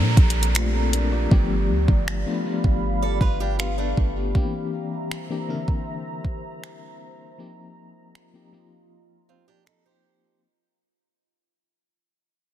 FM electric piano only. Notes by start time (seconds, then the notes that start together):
Already playing: F3 A#3 C4 D4 G4 A4
0.56 A3 F4
0.74 C4 A4
0.93 D4 A#4
1.12 F4 D5
1.30 F3 A3 B3 D4 G4
2.26 F3 A3 B3 D4 F4
2.45 F3 A3 B3 D4 F4
3.59 B3 G4
3.78 D4 B4
4.17 B3 G4
4.35 D3 A#3 C4 D4 G4
4.42 E3
5.29 E3 A#3 C4 D4 G4
5.48 D3 A#3 C4 D4 A#4
5.55 E3
7.38 F3 A#3 C4 D#4 G4
8.33 F3 A#3 C4 D#4 G4
8.52 F3 A#3 C4 D#4 G4